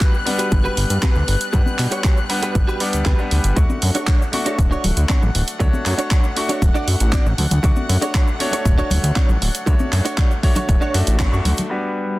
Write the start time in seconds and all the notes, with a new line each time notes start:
Already playing: G3 B3 D4 F#4 G4 B4 F#5 F#6
0.01 kick, clap, closed hi-hat, cabasa
0.14 cabasa
0.25 G3 B3 D4 B4 F#5, open hi-hat, high conga
0.38 F#4 G4 B4, closed hi-hat, cabasa
0.52 G1, kick, closed hi-hat, cabasa
0.64 F#4 G4 B4, cabasa
0.77 G1, open hi-hat
0.89 G2, muted clean electric guitar stroke, closed hi-hat, cabasa
1.02 F#4 G4 B4, kick, clap, closed hi-hat, high conga, cabasa
1.15 D2, cabasa
1.28 G1, muted clean electric guitar stroke, open hi-hat
1.41 closed hi-hat, cabasa
1.53 G2 G3 B3 D4 B4 F#5, muted clean electric guitar stroke, kick, closed hi-hat, cabasa
1.66 muted clean electric guitar stroke, high conga, cabasa
1.79 B2, clap, open hi-hat
1.91 F#4 G4 C#5, closed hi-hat, cabasa
2.04 kick, clap, closed hi-hat, cabasa
2.17 cabasa
2.29 G3 B3 D4 B4 F#5, open hi-hat
2.42 F#4 G4 B4, closed hi-hat, cabasa
2.55 G1, kick, closed hi-hat, cabasa
2.67 F#4 G4 B4, cabasa
2.80 G3 B3 D4 D5 F#5, open hi-hat
2.93 D2, muted clean electric guitar stroke, closed hi-hat, cabasa
3.06 D2 F#4 G4 B4, kick, clap, closed hi-hat, high conga, cabasa
3.19 G3 B3 D4 B4 F#5, cabasa
3.31 D2, muted clean electric guitar stroke, open hi-hat
3.44 G1, closed hi-hat, cabasa
3.56 D2 A3 D4 F#4 F#5 C#6, muted clean electric guitar stroke, kick, closed hi-hat, cabasa
3.69 muted clean electric guitar stroke, high conga, cabasa
3.82 F#2, open hi-hat
3.95 D4 F#4 C#5, closed hi-hat, high bongo, cabasa
4.07 kick, clap, closed hi-hat, cabasa
4.22 cabasa
4.32 A3 D4 F#4 C#6, open hi-hat, high conga
4.46 D4 F#4 C#5, closed hi-hat, high bongo, cabasa
4.58 D1, kick, closed hi-hat, cabasa
4.71 D4 F#4 C#5, cabasa
4.84 D1, open hi-hat, low conga
4.96 D2, muted clean electric guitar stroke, closed hi-hat, cabasa
5.09 D4 F#4 C#5, kick, clap, closed hi-hat, high conga, cabasa
5.22 A1, low conga, cabasa
5.35 D1, muted clean electric guitar stroke, open hi-hat
5.48 closed hi-hat, cabasa
5.59 D2 A3 D4 F#4 C#5, muted clean electric guitar stroke, kick, closed hi-hat, cabasa
5.73 muted clean electric guitar stroke, high conga, cabasa
5.86 F#2, clap, open hi-hat
5.98 D4 F#4 C#5, closed hi-hat, cabasa
6.11 kick, clap, closed hi-hat, cabasa
6.24 cabasa
6.35 A3 D4 F#4 C#6, open hi-hat
6.49 D4 F#4 C#5, closed hi-hat, high bongo, cabasa
6.62 D1, kick, closed hi-hat, cabasa
6.74 D4 F#4 D5, cabasa
6.88 F#2, open hi-hat
7.00 A1, muted clean electric guitar stroke, closed hi-hat, cabasa
7.12 D4 F#4 D5, kick, clap, closed hi-hat, high conga, cabasa
7.26 A1, cabasa
7.38 D2, muted clean electric guitar stroke, open hi-hat, low conga
7.51 D2, closed hi-hat, low conga, cabasa
7.63 D2 A3 D4 F#4 C#6, muted clean electric guitar stroke, kick, closed hi-hat, cabasa
7.76 muted clean electric guitar stroke, high conga, cabasa
7.89 F#2, open hi-hat
8.01 D4 F#4 C#5, closed hi-hat, high bongo, cabasa
8.14 kick, clap, closed hi-hat, cabasa
8.27 cabasa
8.39 A3 D4 F#4 C#5, open hi-hat, high conga
8.52 D4 F#4 C#5, closed hi-hat, high bongo, cabasa
8.65 D1, kick, closed hi-hat, cabasa
8.78 D4 F#4 C#5, cabasa
8.90 D1, open hi-hat, low conga
9.03 D2, muted clean electric guitar stroke, closed hi-hat, cabasa
9.16 D4 F#4 C#5, kick, clap, closed hi-hat, high conga, cabasa
9.29 A1, low conga, cabasa
9.41 D1, muted clean electric guitar stroke, open hi-hat
9.55 closed hi-hat, cabasa
9.66 D2 A3 D4 F#4 C#5, muted clean electric guitar stroke, kick, closed hi-hat, cabasa
9.79 muted clean electric guitar stroke, high conga, cabasa
9.92 F#2, clap, open hi-hat
10.05 D4 F#4 C#5, closed hi-hat, cabasa
10.18 kick, clap, closed hi-hat, cabasa
10.31 cabasa
10.43 A3 D4 F#4 C#5, kick, open hi-hat
10.56 D4 F#4 C#5, closed hi-hat, high bongo, low conga, cabasa
10.68 D1, kick, closed hi-hat, cabasa
10.81 D4 F#4 C#5, cabasa
10.94 F#2 A3 D4 F#4, open hi-hat
11.07 A1, muted clean electric guitar stroke, closed hi-hat, cabasa
11.19 A1 D4 F#4 C#5, kick, clap, closed hi-hat, high conga, cabasa
11.32 F#2 A3 D4 F#4 C#6, cabasa
11.45 D2, muted clean electric guitar stroke, open hi-hat, low conga
11.57 closed hi-hat, low conga, cabasa
11.70 G3 B3 D4 F#4 B4 F#5 B5